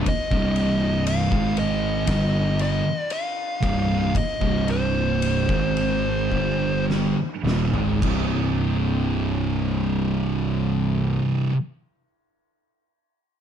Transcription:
0.06 1.03 D#5 loud
0.06 kick loud
0.06 ride loud
0.31 1.27 C1 medium
0.31 1.30 C2 loud
0.31 1.30 G2 loud
0.31 1.30 C3 medium
0.31 kick loud
0.56 ride medium
1.07 1.59 F5 loud
1.07 ride loud
1.32 2.04 G#1 medium
1.32 2.06 G#2 loud
1.32 2.06 D#3 medium
1.32 2.06 G#3 loud
1.32 kick loud
1.57 2.61 D#5 loud
1.57 ride medium
2.07 2.80 G1 loud
2.07 2.83 G2 medium
2.07 2.83 D3 loud
2.07 2.83 G3 loud
2.07 kick loud
2.07 snare loud
2.07 ride medium
2.59 3.00 D#5 medium
2.59 ride medium
3.00 3.12 D5 medium
3.10 4.17 F5 medium
3.10 ride medium
3.62 4.11 C1 medium
3.62 4.13 C2 medium
3.62 4.13 G2 medium
3.62 4.14 C3 loud
3.62 kick loud
3.62 ride medium
4.15 4.71 D#5 medium
4.15 kick loud
4.15 ride loud
4.41 5.45 C1 medium
4.41 5.47 C2 medium
4.41 5.47 G2 medium
4.41 5.47 C3 loud
4.41 kick loud
4.68 6.84 C5 medium
4.68 ride medium
5.22 ride medium
5.49 6.27 G#1 loud
5.49 6.30 G#2 medium
5.49 6.31 D#3 loud
5.49 6.31 G#3 medium
5.49 kick loud
5.77 ride medium
6.32 7.12 G1 medium
6.32 7.14 G2 medium
6.32 7.15 D3 medium
6.32 7.15 G3 medium
6.32 kick medium
6.90 snare medium
7.43 7.70 D#1 medium
7.43 7.71 D#2 medium
7.43 7.72 A#2 medium
7.47 snare medium
7.72 7.99 G#1 loud
7.72 8.00 G#2 medium
7.72 8.02 D#3 medium
7.72 8.02 G#3 loud
7.72 mid tom medium
8.00 11.17 C1 medium
8.00 11.50 C2 medium
8.00 11.52 G2 medium
8.00 kick loud
8.00 crash medium
8.05 11.55 C3 loud

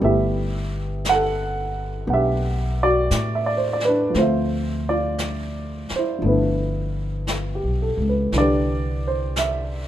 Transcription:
0.00 2.03 G1 medium
0.00 4.13 G3 medium
0.00 4.13 A3 soft
0.00 2.05 B3 soft
0.00 brush sweep soft
0.04 4.16 E4 medium
0.04 1.02 G4 medium
0.04 1.09 E5 medium
1.05 brush sweep soft
1.05 snare soft
1.05 hi-hat pedal soft
1.09 2.06 A4 medium
1.09 2.08 F#5 medium
2.07 3.06 B1 medium
2.07 4.14 B3 soft
2.07 3.87 D4 soft
2.07 4.16 F#5 soft
2.07 brush sweep soft
2.13 2.77 G4 medium
2.13 2.77 E5 medium
2.83 3.30 F#4 medium
2.83 3.35 D5 medium
3.11 4.10 A2 medium
3.11 brush sweep soft
3.11 snare soft
3.11 hi-hat pedal medium
3.35 3.46 E5 medium
3.46 3.58 D5 medium
3.57 3.70 C5 medium
3.73 3.84 D5 medium
3.80 snare soft
3.85 4.16 D4 medium
3.85 4.14 B4 medium
4.10 6.17 F3 soft
4.10 6.21 A3 soft
4.14 5.86 D2 medium
4.14 6.25 C4 soft
4.14 4.84 F4 medium
4.14 4.90 C5 medium
4.14 brush sweep soft
4.14 snare soft
4.21 6.26 E5 medium
4.89 5.88 F4 medium
4.89 5.95 D5 medium
5.18 brush sweep soft
5.18 snare soft
5.18 hi-hat pedal soft
5.89 muted upright bass stroke soft
5.89 snare soft
5.96 6.25 E4 medium
5.96 6.23 C5 medium
6.19 7.58 G1 medium
6.19 8.30 F3 soft
6.19 8.32 A3 soft
6.19 brush sweep soft
6.25 8.34 B3 soft
6.25 8.35 E4 medium
6.25 7.99 B4 medium
6.30 8.00 D4 soft
7.27 7.78 F4 soft
7.27 brush sweep soft
7.27 snare soft
7.27 hi-hat pedal soft
7.55 8.00 G4 soft
7.64 7.96 B1 soft
7.82 8.13 A4 soft
7.97 8.30 C#2 medium
8.09 8.38 B4 soft
8.32 9.88 C2 medium
8.32 9.88 D3 soft
8.32 9.88 E3 soft
8.32 brush sweep soft
8.32 snare soft
8.36 9.88 D4 medium
8.36 9.88 G4 medium
8.36 9.88 B4 medium
8.36 9.09 D5 medium
9.07 9.39 C5 medium
9.36 9.88 E5 medium
9.36 brush sweep soft
9.36 snare soft
9.36 hi-hat pedal medium

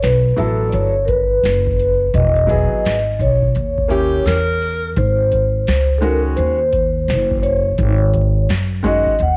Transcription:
0.02 0.36 B1 medium
0.02 0.39 B4 medium
0.02 snare loud
0.02 closed hi-hat loud
0.37 0.71 A1 medium
0.37 0.91 F#3 medium
0.37 0.91 B3 medium
0.37 0.92 E4 medium
0.37 0.69 A4 medium
0.37 0.92 A4 medium
0.37 closed hi-hat medium
0.69 1.40 G1 loud
0.69 0.74 D5 medium
0.69 closed hi-hat medium
0.73 1.05 C#5 loud
1.05 1.09 A#4 medium
1.05 2.17 B4 loud
1.05 kick medium
1.05 closed hi-hat medium
1.43 2.11 F#1 medium
1.43 snare loud
1.43 closed hi-hat medium
1.67 kick medium
1.79 closed hi-hat medium
2.14 2.70 E1 loud
2.14 3.23 D#5 medium
2.14 kick loud
2.14 closed hi-hat medium
2.36 closed hi-hat soft
2.47 2.93 F#3 medium
2.47 2.93 B3 medium
2.47 2.94 E4 medium
2.47 2.94 G#4 medium
2.47 kick medium
2.47 closed hi-hat medium
2.73 muted upright bass stroke soft
2.85 3.19 G#1 medium
2.85 snare loud
2.85 closed hi-hat loud
3.19 3.53 B1 medium
3.19 4.58 C#5 medium
3.19 kick medium
3.19 closed hi-hat medium
3.42 kick medium
3.55 4.23 D#2 medium
3.55 closed hi-hat medium
3.78 kick medium
3.88 4.34 A#3 medium
3.88 4.34 C#4 medium
3.88 4.35 E4 medium
3.88 4.27 G4 medium
3.88 4.35 G4 medium
3.88 kick medium
3.88 closed hi-hat medium
4.26 4.93 E2 medium
4.26 4.97 A#4 loud
4.26 snare loud
4.26 closed hi-hat medium
4.62 open hi-hat soft
4.96 5.64 G#1 loud
4.96 6.01 C5 medium
4.96 kick loud
4.96 closed hi-hat medium
5.32 kick loud
5.32 closed hi-hat medium
5.67 6.35 C#2 medium
5.67 snare loud
5.67 closed hi-hat medium
5.98 6.55 D#3 medium
5.98 6.56 G#3 medium
5.98 6.03 A4 medium
5.98 6.18 A#4 medium
5.98 closed hi-hat medium
6.03 6.56 C#4 medium
6.03 6.57 F#4 medium
6.37 7.10 D#2 medium
6.37 7.38 C5 loud
6.37 closed hi-hat medium
6.73 kick medium
6.73 closed hi-hat medium
7.08 7.75 F#1 medium
7.08 snare loud
7.08 closed hi-hat medium
7.31 kick medium
7.39 7.44 C5 medium
7.43 8.45 C#5 loud
7.43 closed hi-hat medium
7.78 8.46 G#1 loud
7.78 kick loud
7.78 closed hi-hat medium
8.14 kick loud
8.14 closed hi-hat medium
8.49 9.05 F#2 medium
8.49 snare loud
8.49 closed hi-hat loud
8.83 9.12 D#3 medium
8.83 9.12 G#3 medium
8.83 9.13 C#4 medium
8.83 9.13 F#4 medium
8.83 9.22 D#5 loud
8.83 kick medium
8.83 closed hi-hat medium
9.06 muted upright bass stroke soft
9.06 kick medium
9.19 9.37 D#2 medium
9.19 9.37 F#5 loud
9.19 closed hi-hat medium

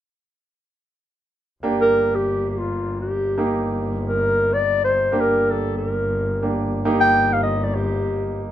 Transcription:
1.63 3.37 G1 medium
1.63 3.34 A#3 medium
1.63 3.34 D4 medium
1.63 3.34 G4 medium
1.81 2.17 A#4 medium
2.15 2.50 G4 medium
2.51 2.59 G4 soft
2.58 3.00 F4 medium
3.00 3.72 G4 medium
3.37 5.12 G1 medium
3.37 5.08 A#3 medium
3.37 5.08 D#4 soft
3.37 5.08 G4 medium
4.08 4.55 A#4 medium
4.53 4.83 D5 medium
4.85 5.22 C5 medium
5.12 6.86 G1 medium
5.12 6.40 A#3 soft
5.12 6.40 D4 soft
5.12 6.40 G4 medium
5.21 5.52 A#4 medium
5.51 5.76 A4 medium
5.78 6.66 A#4 medium
6.42 6.84 A#3 soft
6.42 6.86 D4 soft
6.42 6.84 G4 soft
6.85 8.52 G1 medium
6.85 8.52 A#3 medium
6.85 8.52 D#4 medium
6.85 8.52 G4 medium
7.01 7.35 G5 loud
7.33 7.43 F5 medium
7.43 7.65 D#5 medium
7.63 7.76 D5 medium
7.75 8.42 G4 medium

